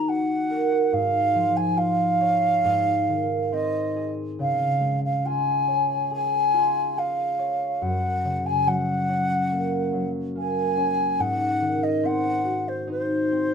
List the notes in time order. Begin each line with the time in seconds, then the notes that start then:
Already playing: D#3 A#3 D#4 A#4 A#5
0.08 F#4 F#5
0.50 A#4
0.93 G#2 F5
1.35 F3
1.57 G#5
1.76 F4 F5
2.21 C#5
2.64 G#2
3.09 D#3
3.52 C4 D#5
3.96 G#4
4.39 C#3 F5
4.81 G#3
5.05 F5
5.25 F4 G#5
5.68 C#5
6.11 G#4 G#5
6.54 F4
6.97 G#4 F5
7.39 C#5
7.82 F#2 F#5
8.24 C#3
8.46 G#5
8.67 F#3 F#5
9.09 C#4
9.52 A#3
9.93 F#3
10.35 A#3 G#5
10.77 C#4
11.19 G#2 F#5
11.61 D#3
11.83 D#5
12.03 C4 F#5
12.44 F#4
12.68 C5
12.87 D#4 C5
13.31 C4